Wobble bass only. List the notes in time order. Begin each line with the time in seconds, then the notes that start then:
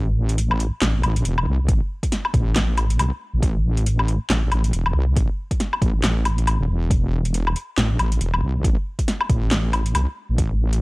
Already playing: A1
0.82 A1
1.03 A1
1.25 E1
1.47 C2
1.69 A1
2.34 A1
2.99 C2
3.34 A1
4.30 A1
4.51 A1
4.73 E1
4.95 C2
5.16 A1
5.82 A1
6.04 A1
6.60 E1
6.69 E1
7.78 A1
7.99 A1
8.21 E1
8.43 C2
8.64 A1
9.30 A1
9.95 C2
10.29 A1